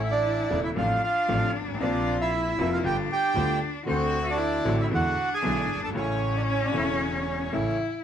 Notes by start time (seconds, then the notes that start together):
Already playing: A1 A2 E3 A3 E4
0.04 E5
0.11 D4 D5
0.50 E1 E2 C#3 E3 A3 E4
0.64 E4 E5
0.76 A1 A2 C3 F3 A3 D4 F4 F5
1.04 F4 F5
1.28 A1 A2 C3 F3 A3 D4
1.54 G#1
1.61 G1
1.68 G#1
1.74 A1
1.79 A#1 A#2 C3 F3 A#3 D4 F4 D5
1.83 C4
2.21 E4 E5
2.32 E4
2.57 F1 F2 C3 F3 A#3 F4
2.73 E4 F4 F5
2.83 G1 G2 D3 G3 B3 D4 F4 G4 G5
3.12 G4 G5
3.34 D2 D3 G3 B3 F4
3.85 D2 D3 A3 C4 F#4 C5
3.89 C4 F#4
4.23 E5
4.30 D4 D5
4.38 E4
4.64 A1 A2 D3 A3 C4 F#4
4.81 E4 E5
4.90 E2 D3 E3 G#3 B3 D4 E4
4.95 F#4 F#5
5.34 G#4 G#5
5.42 B1 B2 D3 G#3 B3 E4
5.69 G1
5.75 F#1
5.83 G1 A4 A5
5.88 G#1
5.93 A1 A2 C#3 E3 A3 C#4 C#5
5.97 C#4 E4
6.36 D4 D5
6.50 C#4 C#5
6.63 D4 D5
6.72 E1 E2 C#3 E3 A3
6.76 E4 E5
6.90 C#4 C#5
7.52 A1 A2 C#3 E3 A3 E4 E5